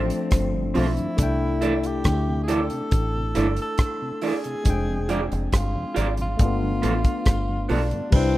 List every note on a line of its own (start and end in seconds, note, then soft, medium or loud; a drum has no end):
0.00 0.10 A1 medium
0.00 1.17 F3 medium
0.00 1.14 A3 medium
0.00 0.49 C4 loud
0.00 1.15 C4 medium
0.00 1.16 D4 medium
0.10 closed hi-hat medium
0.31 0.74 G1 medium
0.31 kick loud
0.31 cross-stick loud
0.31 closed hi-hat medium
0.54 0.65 G2 medium
0.54 0.65 D3 medium
0.74 0.97 B1 medium
0.74 0.86 F3 medium
0.74 0.86 A3 medium
0.74 0.85 C4 medium
0.74 0.86 C4 medium
0.74 1.88 E4 loud
0.74 0.86 F4 medium
0.74 0.86 A4 medium
0.74 open hi-hat medium
0.97 1.08 G2 soft
0.97 1.08 D3 soft
0.97 closed hi-hat soft
1.17 2.02 C2 medium
1.17 4.61 A3 medium
1.17 4.62 D4 medium
1.17 4.63 E4 medium
1.17 kick loud
1.17 closed hi-hat loud
1.23 4.64 G5 medium
1.42 1.52 C3 medium
1.61 1.73 E3 medium
1.61 1.74 A3 medium
1.61 1.74 D4 medium
1.61 1.72 E4 medium
1.61 1.72 A4 medium
1.61 1.73 D5 medium
1.61 closed hi-hat medium
1.83 2.43 G4 medium
1.83 closed hi-hat medium
2.04 2.68 D2 loud
2.04 kick medium
2.04 cross-stick loud
2.04 closed hi-hat medium
2.29 2.39 C3 medium
2.44 2.54 G#4 medium
2.48 2.60 E3 medium
2.48 2.60 A3 medium
2.48 2.60 D4 medium
2.48 2.59 E4 medium
2.48 2.59 A4 medium
2.48 2.60 D5 medium
2.48 closed hi-hat medium
2.52 3.59 A4 loud
2.70 2.82 C3 medium
2.70 closed hi-hat soft
2.91 3.34 A1 medium
2.91 kick loud
2.91 closed hi-hat medium
3.15 3.25 C3 medium
3.35 3.58 G1 loud
3.35 3.47 E3 medium
3.35 3.47 A3 medium
3.35 3.47 D4 medium
3.35 3.46 E4 medium
3.35 3.46 A4 medium
3.35 3.47 D5 medium
3.35 closed hi-hat medium
3.56 closed hi-hat medium
3.62 4.20 A4 medium
3.78 kick loud
3.78 cross-stick loud
3.78 closed hi-hat medium
4.02 4.12 C3 medium
4.21 4.33 E3 medium
4.21 4.34 A3 medium
4.21 4.34 D4 medium
4.21 4.33 E4 medium
4.21 4.33 A4 medium
4.21 4.33 D5 medium
4.21 open hi-hat medium
4.27 5.24 G#4 loud
4.44 4.55 C3 medium
4.44 closed hi-hat soft
4.64 5.29 F1 medium
4.64 6.35 G#3 medium
4.64 6.36 C4 medium
4.64 6.37 D4 medium
4.64 kick loud
4.64 closed hi-hat medium
4.70 6.38 G5 medium
4.89 4.99 F2 medium
4.89 4.99 C3 medium
5.09 5.20 F3 medium
5.09 5.21 G#3 medium
5.09 5.21 D4 medium
5.09 5.19 F4 medium
5.09 5.20 G#4 medium
5.09 5.20 D5 medium
5.09 closed hi-hat medium
5.32 5.52 F1 medium
5.32 closed hi-hat soft
5.53 5.74 G1 medium
5.53 kick medium
5.53 cross-stick loud
5.53 closed hi-hat medium
5.57 6.16 F4 medium
5.75 5.86 F2 medium
5.75 5.86 C3 medium
5.94 6.38 G#1 medium
5.94 6.07 F3 medium
5.94 6.07 G#3 medium
5.94 6.07 D4 medium
5.94 6.06 F4 medium
5.94 6.06 G#4 medium
5.94 6.07 D5 medium
5.94 closed hi-hat medium
6.17 6.29 F2 medium
6.17 6.29 C3 soft
6.17 closed hi-hat soft
6.22 7.67 F4 medium
6.37 6.81 G1 medium
6.37 8.08 A3 medium
6.37 6.46 A#3 soft
6.37 8.10 D4 medium
6.37 kick loud
6.37 closed hi-hat medium
6.43 8.12 B3 medium
6.43 8.11 F4 medium
6.63 6.73 G2 medium
6.63 6.72 D3 medium
6.82 7.05 A1 medium
6.82 6.93 F3 medium
6.82 6.94 A3 medium
6.82 6.93 B3 medium
6.82 6.94 B3 medium
6.82 6.93 F4 medium
6.82 6.93 A4 medium
6.82 closed hi-hat medium
7.04 kick medium
7.04 closed hi-hat medium
7.26 7.68 G1 medium
7.26 kick loud
7.26 cross-stick loud
7.26 closed hi-hat medium
7.49 7.59 G2 medium
7.49 7.59 D3 medium
7.69 7.91 B1 medium
7.69 7.80 F3 medium
7.69 7.80 A3 medium
7.69 7.79 B3 medium
7.69 7.80 B3 medium
7.69 8.11 D4 medium
7.69 7.80 F4 medium
7.69 7.80 A4 medium
7.69 open hi-hat medium
7.91 8.02 G2 soft
7.91 8.02 D3 medium
7.91 closed hi-hat soft
8.10 8.38 C2 loud
8.10 8.38 G3 medium
8.10 8.38 B4 medium
8.10 kick loud
8.10 crash loud
8.15 8.38 C4 loud
8.15 8.38 D4 medium
8.15 8.38 E4 medium